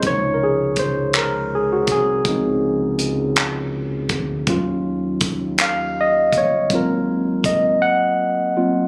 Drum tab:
HH |x-xx-x|x-xx-x|x-xx-x|x-x---|
CP |---x--|---x--|---x--|------|
BD |o-o--o|o----o|o-o--o|o-o---|